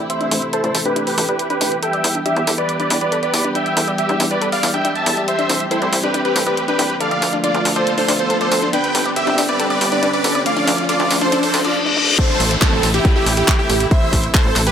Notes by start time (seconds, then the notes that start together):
Already playing: C3 E3 A3 E4, riser
0.10 C5 E5, closed hi-hat
0.21 D4, closed hi-hat
0.31 A1 D4, open hi-hat
0.42 closed hi-hat
0.53 A4 C5, closed hi-hat
0.64 A1 D5, closed hi-hat
0.75 A1, open hi-hat
0.85 D4 G4 B4, closed hi-hat
0.96 D4, closed hi-hat
1.07 G4 B4, open hi-hat
1.18 A1 A4, open hi-hat
1.28 G4 B4 D5, closed hi-hat
1.39 closed hi-hat
1.50 D4 G4 B4, closed hi-hat
1.61 A1 D4, open hi-hat
1.72 closed hi-hat
1.82 G3 B3 G4 A4 E5 G5, closed hi-hat
1.93 D5, closed hi-hat
2.04 E2, open hi-hat
2.15 D4, closed hi-hat
2.26 D4 G4 E5, closed hi-hat
2.36 E2, closed hi-hat
2.47 E2 A4, open hi-hat
2.58 B4 D5, closed hi-hat
2.69 closed hi-hat
2.80 D4 B4 D5, closed hi-hat
2.90 E2 D4, open hi-hat
3.01 B4 D5, closed hi-hat
3.12 A4, closed hi-hat
3.23 B4 D5, closed hi-hat
3.34 E2, open hi-hat
3.44 D4
3.55 D4 E5 G5, closed hi-hat
3.66 closed hi-hat
3.77 E2 A4, open hi-hat
3.88 D5, closed hi-hat
3.98 G4 E5, closed hi-hat
4.09 E2 D4, closed hi-hat
4.20 E2 D4, open hi-hat
4.31 B4 D5, closed hi-hat
4.42 A4, closed hi-hat
4.52 D5 F5, open hi-hat
4.63 E2, open hi-hat
4.74 D4 E5 G5, closed hi-hat
4.85 D4, closed hi-hat
4.96 E5 A5, closed hi-hat
5.06 E2 A4, open hi-hat
5.17 D5, closed hi-hat
5.28 C4 C5 E5, closed hi-hat
5.39 D4, closed hi-hat
5.49 C2 D4, open hi-hat
5.60 closed hi-hat
5.71 E4 A4 C5, closed hi-hat
5.82 C2 D5, closed hi-hat
5.93 C2, open hi-hat
6.03 D4 G4 B4, closed hi-hat
6.14 D4, closed hi-hat
6.25 G4 B4, closed hi-hat
6.36 C2 A4, open hi-hat
6.46 G4 B4 D5, closed hi-hat
6.57 closed hi-hat
6.68 D4 G4 B4, closed hi-hat
6.79 C2 D4, open hi-hat
6.90 closed hi-hat
7.00 D3 F3 A3 F4 A4 D5 F5, closed hi-hat
7.11 D5, closed hi-hat
7.22 D2, open hi-hat
7.33 D4, closed hi-hat
7.44 D4 F4 D5, closed hi-hat
7.54 D2, closed hi-hat
7.65 D2 A4, open hi-hat
7.76 A4 C5 D5, closed hi-hat
7.87 closed hi-hat
7.98 D4 A4 C5, open hi-hat
8.08 D2 D4, open hi-hat
8.19 A4 C5, closed hi-hat
8.30 A4, closed hi-hat
8.41 A4 C5 D5, closed hi-hat
8.52 D2, open hi-hat
8.62 D4, closed hi-hat
8.73 G3 B3 D4 G4 B4 G5, closed hi-hat
8.84 closed hi-hat
8.95 G1 A4, open hi-hat
9.06 D5, closed hi-hat
9.16 G4 E5, closed hi-hat
9.27 G1 D4, closed hi-hat
9.38 G1 D4, open hi-hat
9.49 B4 D5, closed hi-hat
9.59 A4, closed hi-hat
9.70 B4 D5, closed hi-hat
9.81 G1, open hi-hat
9.92 D4 B4 D5, closed hi-hat
10.03 D4, closed hi-hat
10.13 B4 D5, closed hi-hat
10.24 G1 A4, open hi-hat
10.35 D5, closed hi-hat
10.46 F3 A3 F4 D5 F5, closed hi-hat
10.57 D4, closed hi-hat
10.67 D2 D4, open hi-hat
10.78 closed hi-hat
10.89 F4 A4 D5, closed hi-hat
11.00 D2 D5, closed hi-hat
11.11 D2, open hi-hat
11.21 D4 A4 C5, closed hi-hat
11.32 D4, closed hi-hat, reverse cymbal
11.43 A4 C5, open hi-hat
11.54 D2 A4, open hi-hat
11.65 F4 D5, closed hi-hat
11.86 D4
11.97 D4
12.18 C3 E3 A3 E4 A4 C5, kick, closed hi-hat, crash, downlifter
12.40 A1, open hi-hat
12.51 closed hi-hat
12.62 C4 A4, kick, clap, closed hi-hat
12.72 A1
12.83 A1, open hi-hat
12.94 E4 G4, closed hi-hat
13.05 kick, closed hi-hat
13.16 E4 G4
13.26 A1, open hi-hat
13.37 E4 G4, closed hi-hat
13.48 kick, clap, closed hi-hat
13.59 E4 G4
13.70 A1, open hi-hat
13.80 closed hi-hat
13.91 C5 E5, kick, closed hi-hat
14.13 A1, kick, open hi-hat
14.24 closed hi-hat
14.34 A4 C5, kick, clap, closed hi-hat
14.45 A1
14.56 A1, clap, open hi-hat
14.67 G4 B4, closed hi-hat